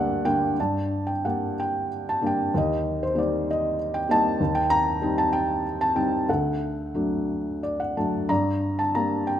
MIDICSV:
0, 0, Header, 1, 2, 480
1, 0, Start_track
1, 0, Key_signature, -2, "minor"
1, 0, Tempo, 659341
1, 424, Time_signature, 6, 3, 24, 8
1, 1377, Tempo, 628272
1, 4737, Tempo, 664452
1, 6983, End_track
2, 0, Start_track
2, 0, Title_t, "Felt piano"
2, 0, Program_c, 0, 0
2, 0, Control_c, 0, 64, 127
2, 0, Note_on_c, 0, 38, 64
2, 0, Note_on_c, 0, 43, 68
2, 0, Note_on_c, 0, 55, 44
2, 0, Note_on_c, 0, 58, 41
2, 0, Note_on_c, 0, 62, 55
2, 0, Note_on_c, 0, 70, 48
2, 0, Note_on_c, 0, 74, 81
2, 0, Note_on_c, 0, 78, 72
2, 0, Note_on_c, 0, 79, 74
2, 169, Note_off_c, 0, 55, 0
2, 172, Note_off_c, 0, 58, 0
2, 173, Note_off_c, 0, 62, 0
2, 179, Note_on_c, 0, 55, 47
2, 183, Note_on_c, 0, 58, 42
2, 184, Note_off_c, 0, 79, 0
2, 184, Note_on_c, 0, 62, 56
2, 184, Note_on_c, 0, 79, 83
2, 185, Note_off_c, 0, 78, 0
2, 375, Note_off_c, 0, 55, 0
2, 377, Note_off_c, 0, 58, 0
2, 378, Note_off_c, 0, 62, 0
2, 392, Note_off_c, 0, 43, 0
2, 405, Note_off_c, 0, 38, 0
2, 409, Note_off_c, 0, 79, 0
2, 433, Note_off_c, 0, 74, 0
2, 433, Control_c, 0, 64, 0
2, 435, Note_on_c, 0, 43, 47
2, 436, Note_on_c, 0, 74, 43
2, 437, Note_on_c, 0, 81, 57
2, 438, Note_off_c, 0, 70, 0
2, 546, Control_c, 0, 64, 127
2, 777, Note_on_c, 0, 79, 58
2, 801, Note_off_c, 0, 81, 0
2, 904, Note_off_c, 0, 79, 0
2, 909, Note_on_c, 0, 78, 55
2, 911, Note_on_c, 0, 55, 40
2, 916, Note_on_c, 0, 58, 35
2, 918, Note_on_c, 0, 62, 43
2, 1118, Note_off_c, 0, 74, 0
2, 1151, Note_off_c, 0, 78, 0
2, 1162, Note_on_c, 0, 79, 68
2, 1367, Note_off_c, 0, 55, 0
2, 1369, Note_off_c, 0, 58, 0
2, 1370, Note_off_c, 0, 62, 0
2, 1485, Note_off_c, 0, 79, 0
2, 1529, Note_on_c, 0, 81, 66
2, 1624, Note_on_c, 0, 55, 39
2, 1630, Note_on_c, 0, 58, 36
2, 1630, Note_on_c, 0, 62, 43
2, 1640, Note_off_c, 0, 81, 0
2, 1662, Note_on_c, 0, 79, 67
2, 1839, Note_off_c, 0, 43, 0
2, 1858, Note_off_c, 0, 55, 0
2, 1861, Note_off_c, 0, 58, 0
2, 1861, Note_off_c, 0, 62, 0
2, 1872, Control_c, 0, 64, 0
2, 1874, Note_on_c, 0, 39, 57
2, 1891, Note_off_c, 0, 79, 0
2, 1891, Note_on_c, 0, 67, 50
2, 1901, Note_on_c, 0, 75, 70
2, 1998, Control_c, 0, 64, 127
2, 2246, Note_on_c, 0, 72, 66
2, 2254, Note_off_c, 0, 75, 0
2, 2336, Note_on_c, 0, 55, 41
2, 2340, Note_on_c, 0, 58, 36
2, 2344, Note_on_c, 0, 63, 43
2, 2359, Note_off_c, 0, 72, 0
2, 2366, Note_on_c, 0, 74, 61
2, 2568, Note_off_c, 0, 67, 0
2, 2602, Note_off_c, 0, 74, 0
2, 2611, Note_on_c, 0, 75, 70
2, 2805, Note_off_c, 0, 55, 0
2, 2807, Note_off_c, 0, 58, 0
2, 2809, Note_off_c, 0, 63, 0
2, 2943, Note_on_c, 0, 79, 77
2, 2965, Note_off_c, 0, 75, 0
2, 3055, Note_on_c, 0, 55, 46
2, 3058, Note_on_c, 0, 58, 40
2, 3064, Note_off_c, 0, 79, 0
2, 3064, Note_on_c, 0, 63, 48
2, 3070, Note_on_c, 0, 75, 55
2, 3074, Note_on_c, 0, 81, 94
2, 3268, Note_off_c, 0, 39, 0
2, 3284, Note_off_c, 0, 55, 0
2, 3285, Note_off_c, 0, 58, 0
2, 3288, Note_off_c, 0, 63, 0
2, 3295, Note_on_c, 0, 39, 58
2, 3301, Control_c, 0, 64, 0
2, 3407, Note_on_c, 0, 79, 85
2, 3427, Note_off_c, 0, 81, 0
2, 3428, Control_c, 0, 64, 127
2, 3524, Note_on_c, 0, 82, 104
2, 3529, Note_off_c, 0, 79, 0
2, 3738, Note_off_c, 0, 75, 0
2, 3765, Note_on_c, 0, 55, 47
2, 3770, Note_on_c, 0, 60, 42
2, 3772, Note_on_c, 0, 63, 50
2, 3856, Note_off_c, 0, 82, 0
2, 3890, Note_on_c, 0, 81, 79
2, 4001, Note_on_c, 0, 79, 84
2, 4010, Note_off_c, 0, 81, 0
2, 4232, Note_off_c, 0, 55, 0
2, 4234, Note_off_c, 0, 60, 0
2, 4236, Note_off_c, 0, 63, 0
2, 4371, Note_on_c, 0, 81, 81
2, 4377, Note_off_c, 0, 79, 0
2, 4481, Note_on_c, 0, 55, 46
2, 4485, Note_on_c, 0, 79, 72
2, 4486, Note_on_c, 0, 63, 52
2, 4488, Note_on_c, 0, 60, 40
2, 4496, Note_off_c, 0, 81, 0
2, 4708, Note_off_c, 0, 39, 0
2, 4725, Note_off_c, 0, 55, 0
2, 4728, Note_off_c, 0, 63, 0
2, 4729, Note_off_c, 0, 60, 0
2, 4732, Note_on_c, 0, 38, 58
2, 4740, Note_on_c, 0, 69, 45
2, 4740, Note_on_c, 0, 78, 63
2, 4742, Note_off_c, 0, 79, 0
2, 4746, Control_c, 0, 64, 0
2, 4892, Control_c, 0, 64, 127
2, 5210, Note_on_c, 0, 57, 36
2, 5211, Note_on_c, 0, 54, 41
2, 5217, Note_on_c, 0, 62, 45
2, 5674, Note_off_c, 0, 69, 0
2, 5674, Note_off_c, 0, 78, 0
2, 5685, Note_off_c, 0, 54, 0
2, 5685, Note_off_c, 0, 57, 0
2, 5688, Note_off_c, 0, 62, 0
2, 5707, Note_on_c, 0, 74, 53
2, 5818, Note_off_c, 0, 74, 0
2, 5827, Note_on_c, 0, 78, 54
2, 5938, Note_off_c, 0, 78, 0
2, 5952, Note_on_c, 0, 54, 36
2, 5952, Note_on_c, 0, 57, 33
2, 5952, Note_on_c, 0, 81, 46
2, 5954, Note_on_c, 0, 62, 40
2, 6156, Note_off_c, 0, 38, 0
2, 6175, Note_off_c, 0, 81, 0
2, 6182, Note_on_c, 0, 43, 53
2, 6182, Note_on_c, 0, 82, 77
2, 6184, Note_off_c, 0, 54, 0
2, 6184, Note_off_c, 0, 57, 0
2, 6185, Note_off_c, 0, 62, 0
2, 6196, Note_on_c, 0, 74, 54
2, 6198, Control_c, 0, 64, 0
2, 6318, Control_c, 0, 64, 127
2, 6542, Note_on_c, 0, 81, 70
2, 6556, Note_off_c, 0, 82, 0
2, 6659, Note_on_c, 0, 82, 70
2, 6661, Note_on_c, 0, 55, 39
2, 6663, Note_on_c, 0, 58, 37
2, 6667, Note_off_c, 0, 81, 0
2, 6667, Note_on_c, 0, 62, 46
2, 6876, Note_off_c, 0, 74, 0
2, 6891, Note_on_c, 0, 79, 70
2, 6904, Note_off_c, 0, 82, 0
2, 6983, Note_off_c, 0, 43, 0
2, 6983, Note_off_c, 0, 55, 0
2, 6983, Note_off_c, 0, 58, 0
2, 6983, Note_off_c, 0, 62, 0
2, 6983, Note_off_c, 0, 79, 0
2, 6983, End_track
0, 0, End_of_file